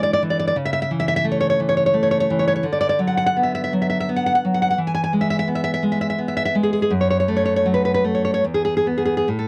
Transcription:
0.00 0.51 D3 soft
0.00 0.21 E3 soft
0.00 0.55 G#3 soft
0.00 0.11 D5 medium
0.13 0.21 D5 medium
0.23 0.56 E3 soft
0.30 0.38 D5 medium
0.39 0.46 D5 medium
0.47 0.55 D5 medium
0.56 2.61 C#3 medium
0.65 0.72 E5 medium
0.73 0.81 E5 medium
0.82 0.90 E5 medium
0.91 1.59 E3 soft
1.00 1.07 E5 medium
1.08 1.15 E5 medium
1.16 1.25 E5 medium
1.24 1.92 A3 soft
1.32 1.39 C#5 medium
1.41 1.49 C#5 medium
1.50 1.59 C#5 medium
1.60 2.29 E3 soft
1.69 1.76 C#5 medium
1.77 1.85 C#5 medium
1.86 1.95 C#5 medium
1.94 2.63 A3 soft
2.03 2.10 C#5 medium
2.11 2.19 C#5 medium
2.20 2.29 C#5 medium
2.30 2.65 E3 soft
2.39 2.46 C#5 medium
2.48 2.54 C#5 medium
2.56 2.64 C#5 medium
2.63 4.72 D3 medium
2.73 2.79 D5 medium
2.81 2.88 D5 medium
2.89 2.99 D5 medium
2.99 3.72 F#3 soft
3.07 3.16 F#5 medium
3.17 3.25 F#5 medium
3.26 3.35 F#5 medium
3.37 4.08 B3 soft
3.43 3.53 E5 medium
3.55 3.63 E5 medium
3.64 3.72 E5 medium
3.73 4.43 F#3 soft
3.82 3.88 E5 medium
3.90 3.99 E5 medium
4.00 4.08 E5 medium
4.09 4.78 B3 soft
4.16 4.25 F#5 medium
4.26 4.34 F#5 medium
4.35 4.43 F#5 medium
4.45 4.78 F#3 soft
4.54 4.61 F#5 medium
4.62 4.69 F#5 medium
4.70 4.78 F#5 medium
4.78 6.88 E3 medium
4.87 4.93 G#5 medium
4.95 5.02 G#5 medium
5.04 5.12 G#5 medium
5.13 5.82 G#3 soft
5.21 5.29 E5 medium
5.30 5.38 E5 medium
5.39 5.48 E5 medium
5.48 6.17 B3 soft
5.55 5.63 E5 medium
5.64 5.72 E5 medium
5.74 5.83 E5 medium
5.83 6.54 G#3 soft
5.92 6.00 E5 medium
6.01 6.09 E5 medium
6.10 6.19 E5 medium
6.18 6.91 B3 soft
6.28 6.35 E5 medium
6.37 6.44 E5 medium
6.45 6.55 E5 medium
6.55 6.91 G#3 soft
6.63 6.72 G#4 medium
6.73 6.81 G#4 medium
6.82 6.91 G#4 medium
6.90 8.38 F#2 medium
7.01 7.09 C#5 medium
7.10 7.19 C#5 medium
7.20 7.29 C#5 medium
7.28 8.03 A3 soft
7.36 7.44 C#5 medium
7.45 7.55 C#5 medium
7.56 7.65 C#5 medium
7.66 8.43 F#3 soft
7.74 7.83 B4 medium
7.85 7.93 B4 medium
7.94 8.03 B4 medium
8.04 8.43 A3 soft
8.15 8.23 C#5 medium
8.25 8.33 C#5 medium
8.34 8.43 C#5 medium
8.44 9.26 E2 soft
8.54 8.64 G#4 medium
8.65 8.74 G#4 medium
8.77 8.86 G#4 medium
8.87 9.25 B3 soft
8.98 9.04 G#4 medium
9.05 9.16 G#4 medium
9.17 9.28 G#4 medium
9.28 9.48 A2 soft
9.39 9.48 A4 soft

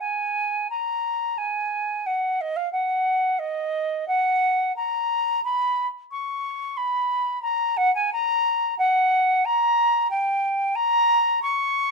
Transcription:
0.00 0.68 G#5 medium
0.70 1.39 A#5 medium
1.38 2.08 G#5 medium
2.06 2.42 F#5 medium
2.41 2.58 D#5 medium
2.56 2.71 F5 medium
2.72 3.40 F#5 medium
3.39 4.07 D#5 medium
4.08 4.74 F#5 medium
4.76 5.43 A#5 medium
5.44 5.87 B5 medium
6.11 6.78 C#6 medium
6.77 7.41 B5 medium
7.42 7.78 A#5 medium
7.77 7.93 F#5 medium
7.95 8.10 G#5 medium
8.12 8.77 A#5 medium
8.78 9.46 F#5 medium
9.45 10.10 A#5 medium
10.10 10.77 G5 medium
10.75 11.42 A#5 loud
11.42 11.91 C#6 medium

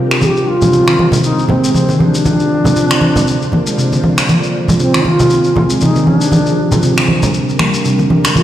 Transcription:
0.00 0.10 C3 medium
0.00 0.20 G3 medium
0.00 0.20 D4 medium
0.00 2.22 G4 medium
0.00 0.20 A#4 medium
0.11 finger snap medium
0.21 0.35 F3 medium
0.21 2.24 F3 medium
0.21 2.24 C4 medium
0.21 2.24 G#4 medium
0.21 0.27 G#4 medium
0.21 muted conga soft
0.21 high conga medium
0.21 shekere medium
0.26 0.49 G4 loud
0.37 shekere soft
0.48 1.23 F4 loud
0.62 0.72 F3 medium
0.62 high conga medium
0.62 low conga loud
0.62 shekere medium
0.73 0.81 C3 medium
0.73 muted conga soft
0.73 shekere medium
0.87 0.93 D#3 medium
0.87 finger snap medium
0.87 shekere soft
0.99 high conga medium
1.12 1.19 C3 medium
1.12 muted conga soft
1.12 low conga loud
1.12 shekere medium
1.23 1.47 D#4 medium
1.23 shekere medium
1.39 shekere soft
1.49 1.57 A#3 medium
1.49 1.73 C4 medium
1.49 muted conga soft
1.49 high conga medium
1.49 low conga medium
1.64 1.74 G#3 medium
1.64 shekere medium
1.74 1.82 C3 medium
1.74 2.01 C4 medium
1.74 high conga medium
1.74 shekere medium
1.89 1.95 D#3 medium
1.89 muted conga soft
1.89 shekere soft
2.00 2.05 D#4 medium
2.00 high conga medium
2.04 4.03 D4 medium
2.14 shekere medium
2.25 2.39 F3 medium
2.25 4.27 A#3 medium
2.25 4.27 F4 medium
2.25 4.27 C5 medium
2.25 4.27 D5 medium
2.25 muted conga soft
2.25 high conga medium
2.25 shekere medium
2.40 shekere soft
2.64 2.75 F3 medium
2.64 high conga medium
2.64 low conga medium
2.64 shekere medium
2.76 2.84 C3 medium
2.76 muted conga soft
2.76 shekere medium
2.91 2.97 D3 medium
2.91 finger snap medium
2.91 shekere soft
3.01 high conga medium
3.16 3.22 C3 medium
3.16 muted conga soft
3.16 low conga loud
3.16 shekere medium
3.27 shekere medium
3.42 shekere soft
3.52 3.60 A#3 medium
3.52 muted conga soft
3.52 high conga medium
3.67 3.77 G#3 medium
3.67 shekere medium
3.78 3.86 C3 medium
3.78 shekere medium
3.92 3.98 D3 medium
3.92 muted conga soft
3.92 shekere soft
4.04 high conga medium
4.18 finger snap medium
4.18 shekere medium
4.29 4.42 F3 medium
4.29 6.30 F3 medium
4.29 6.30 C4 medium
4.29 6.30 G4 medium
4.29 6.30 G#4 medium
4.29 muted conga soft
4.29 high conga medium
4.29 shekere medium
4.43 shekere soft
4.68 4.79 F3 medium
4.68 high conga medium
4.68 low conga medium
4.68 shekere medium
4.79 4.88 C3 medium
4.79 4.85 D4 medium
4.79 muted conga soft
4.79 shekere medium
4.84 5.06 C4 medium
4.94 5.00 D#3 medium
4.94 finger snap medium
4.94 shekere soft
5.04 5.55 F4 loud
5.04 high conga medium
5.19 5.25 C3 medium
5.19 muted conga soft
5.19 low conga medium
5.19 shekere medium
5.30 shekere medium
5.44 shekere soft
5.55 5.64 A#3 medium
5.55 5.62 F4 medium
5.55 muted conga soft
5.55 high conga medium
5.55 low conga loud
5.70 5.80 G#3 medium
5.70 shekere medium
5.81 5.89 C3 medium
5.81 6.08 D#4 medium
5.81 high conga medium
5.81 shekere medium
5.96 6.02 D#3 medium
5.96 muted conga soft
5.96 shekere soft
6.06 6.19 C#4 medium
6.06 high conga medium
6.19 6.83 D4 medium
6.19 shekere medium
6.32 6.45 F3 medium
6.32 8.34 G3 medium
6.32 8.33 D4 medium
6.32 8.43 G4 medium
6.32 8.34 A#4 medium
6.32 muted conga soft
6.32 high conga medium
6.32 shekere medium
6.46 shekere soft
6.71 6.82 F3 medium
6.71 high conga medium
6.71 low conga loud
6.71 shekere medium
6.82 6.91 C3 medium
6.82 muted conga soft
6.82 shekere medium
6.97 7.03 D3 medium
6.97 finger snap medium
6.97 shekere soft
7.08 high conga medium
7.22 7.29 C3 medium
7.22 muted conga soft
7.22 low conga loud
7.22 shekere medium
7.34 shekere medium
7.49 shekere soft
7.59 7.67 A#3 medium
7.59 finger snap medium
7.59 muted conga soft
7.59 high conga medium
7.74 7.84 G3 medium
7.74 shekere medium
7.85 7.93 C3 medium
7.85 shekere medium
7.99 8.05 D3 medium
7.99 muted conga soft
7.99 shekere soft
8.10 high conga medium
8.25 finger snap medium
8.25 shekere medium
8.36 8.43 F3 medium
8.36 8.43 C4 medium
8.36 8.43 F4 medium
8.36 8.43 G#4 medium
8.36 muted conga soft
8.36 high conga medium
8.36 shekere medium

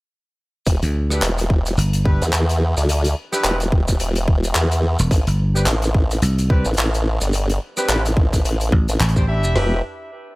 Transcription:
0.66 0.80 E1 loud
0.66 kick loud
0.66 closed hi-hat medium
0.66 maracas medium
0.82 1.20 D2 loud
0.82 closed hi-hat medium
0.82 maracas soft
1.10 1.24 D4 medium
1.10 1.24 E4 medium
1.10 1.24 G4 medium
1.10 1.24 B4 medium
1.10 cross-stick medium
1.10 maracas medium
1.22 1.76 E1 loud
1.22 clap loud
1.22 closed hi-hat loud
1.22 maracas medium
1.38 cross-stick soft
1.38 closed hi-hat medium
1.38 maracas soft
1.50 kick loud
1.66 closed hi-hat medium
1.66 maracas medium
1.78 2.19 G1 loud
1.78 closed hi-hat loud
1.78 maracas medium
1.93 closed hi-hat medium
1.93 maracas soft
2.05 2.23 D4 medium
2.05 2.23 E4 medium
2.05 2.23 G4 medium
2.05 2.23 B4 loud
2.05 kick loud
2.22 2.32 E2 loud
2.22 closed hi-hat medium
2.22 maracas medium
2.33 2.75 E2 medium
2.33 clap loud
2.33 closed hi-hat medium
2.33 maracas medium
2.49 closed hi-hat medium
2.49 maracas soft
2.77 3.15 D2 loud
2.77 cross-stick soft
2.77 closed hi-hat medium
2.77 maracas medium
2.89 closed hi-hat medium
2.89 maracas medium
3.04 closed hi-hat medium
3.04 maracas soft
3.33 3.57 D4 loud
3.33 3.57 E4 medium
3.33 3.57 G4 medium
3.33 3.57 B4 loud
3.33 cross-stick medium
3.33 maracas medium
3.44 3.98 E1 medium
3.44 clap loud
3.44 closed hi-hat medium
3.44 maracas medium
3.60 cross-stick soft
3.60 closed hi-hat medium
3.60 maracas soft
3.72 kick loud
3.88 kick medium
3.88 closed hi-hat medium
3.88 maracas medium
4.00 4.54 E1 loud
4.00 closed hi-hat loud
4.00 maracas medium
4.15 closed hi-hat medium
4.15 maracas soft
4.28 kick loud
4.44 closed hi-hat medium
4.44 maracas medium
4.55 4.97 E2 medium
4.55 clap loud
4.55 closed hi-hat medium
4.55 maracas medium
4.72 closed hi-hat medium
4.72 maracas soft
4.99 5.09 E1 loud
4.99 closed hi-hat medium
4.99 maracas medium
5.11 5.25 A1 loud
5.11 kick loud
5.11 closed hi-hat medium
5.11 maracas medium
5.27 5.65 G1 loud
5.27 closed hi-hat medium
5.27 maracas soft
5.55 5.69 C4 medium
5.55 5.68 D4 medium
5.55 5.68 G4 medium
5.55 5.68 B4 medium
5.55 cross-stick soft
5.55 maracas medium
5.66 6.20 A1 loud
5.66 clap loud
5.66 closed hi-hat loud
5.66 maracas medium
5.82 cross-stick soft
5.82 closed hi-hat medium
5.82 maracas soft
5.94 kick loud
6.11 closed hi-hat medium
6.11 maracas medium
6.22 6.64 C2 loud
6.22 closed hi-hat medium
6.22 maracas medium
6.38 closed hi-hat medium
6.38 maracas soft
6.50 6.68 C4 medium
6.50 6.68 D4 medium
6.50 6.68 G4 medium
6.50 6.68 B4 loud
6.50 kick loud
6.65 6.76 A1 loud
6.65 closed hi-hat soft
6.65 maracas medium
6.74 closed hi-hat soft
6.74 maracas medium
6.77 7.19 A1 loud
6.77 clap loud
6.77 closed hi-hat medium
6.94 closed hi-hat medium
6.94 maracas soft
7.21 7.59 G1 loud
7.21 cross-stick soft
7.21 closed hi-hat medium
7.21 maracas medium
7.33 closed hi-hat medium
7.33 maracas medium
7.50 closed hi-hat medium
7.50 maracas soft
7.77 8.02 C4 loud
7.77 8.02 D4 medium
7.77 8.02 G4 medium
7.77 8.02 B4 loud
7.77 cross-stick soft
7.77 maracas medium
7.88 8.43 A1 loud
7.88 clap loud
7.88 closed hi-hat medium
7.88 maracas medium
8.06 cross-stick soft
8.06 closed hi-hat medium
8.06 maracas soft
8.17 kick loud
8.33 kick medium
8.33 closed hi-hat medium
8.33 maracas medium
8.44 8.70 A1 loud
8.44 closed hi-hat medium
8.44 maracas medium
8.60 closed hi-hat medium
8.60 maracas soft
8.72 8.86 A1 medium
8.72 kick loud
8.89 8.98 A1 loud
8.89 closed hi-hat medium
8.89 maracas medium
9.00 9.54 A1 loud
9.00 clap loud
9.00 closed hi-hat medium
9.00 maracas medium
9.09 closed hi-hat medium
9.16 9.25 C4 medium
9.16 9.25 D4 medium
9.16 9.25 G4 medium
9.16 9.25 C5 medium
9.16 kick medium
9.16 maracas soft
9.28 9.55 D4 medium
9.28 9.55 E4 medium
9.28 9.55 G4 medium
9.28 9.84 E5 loud
9.44 maracas medium
9.56 9.82 E1 loud
9.56 9.78 D4 medium
9.56 9.78 E4 medium
9.56 9.77 G4 medium
9.56 9.77 B4 loud
9.56 snare loud
9.56 floor tom loud
9.56 open hi-hat medium

